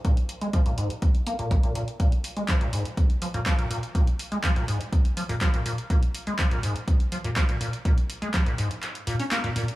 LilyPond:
<<
  \new Staff \with { instrumentName = "Acid bass" } { \clef bass \time 4/4 \key c \phrygian \tempo 4 = 123 bes,16 r8 aes16 f16 bes,16 aes,16 r8. bes16 bes,16 bes,,16 bes,16 bes,16 r16 | bes,16 r8 aes16 f16 bes,16 aes,16 r8. f16 bes,16 f16 bes,16 bes,16 r16 | bes,16 r8 aes16 f16 bes,16 aes,16 r8. f16 bes,16 f16 bes,16 bes,16 r16 | bes,16 r8 aes16 f16 bes,16 aes,16 r8. f16 bes,16 f16 bes,16 bes,16 r16 |
bes,16 r8 aes16 f16 bes,16 aes,16 r8. bes,16 des'16 bes16 bes,16 bes,16 r16 | }
  \new DrumStaff \with { instrumentName = "Drums" } \drummode { \time 4/4 <hh bd>16 hh16 hh16 hh16 <hh bd>16 hh16 hh16 hh16 <hh bd>16 hh16 hh16 hh16 <hh bd>16 hh16 hh16 hh16 | <hh bd>16 hh16 hho16 hh16 <hc hh bd>16 hh16 hho16 hh16 <hh bd>16 hh16 hho16 hh16 <hc hh bd>16 hh16 hho16 hh16 | <hh bd>16 hh16 hho16 hh16 <hc hh bd>16 hh16 hho16 hh16 <hh bd>16 hh16 hho16 hho16 <hc hh bd>16 hh16 hho16 hh16 | <hh bd>16 hh16 hho16 hh16 <hc hh bd>16 hh16 hho16 hh16 <hh bd>16 hh16 hho16 hh16 <hc hh bd>16 hh16 hho16 hh16 |
<hh bd>16 hh16 hho16 hh16 <hc hh bd>16 hh16 hho16 hh16 <hc hh>16 hh16 hho16 hho16 <hc hh>16 hh16 hho16 hh16 | }
>>